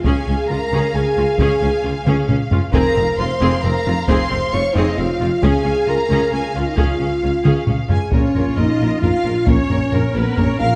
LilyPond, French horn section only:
\new Staff \with { instrumentName = "French horn section" } { \time 3/4 \key des \lydian \tempo 4 = 134 aes'4 bes'4 aes'4 | aes'4. r4. | bes'4 c''4 bes'4 | c''4 des''8 ees'8 f'4 |
aes'4 bes'4 aes'8 f'16 ees'16 | f'2 r8 aes'8 | \key bes \phrygian des'4 ees'4 f'4 | des'4. ces'8 des'8 f'8 | }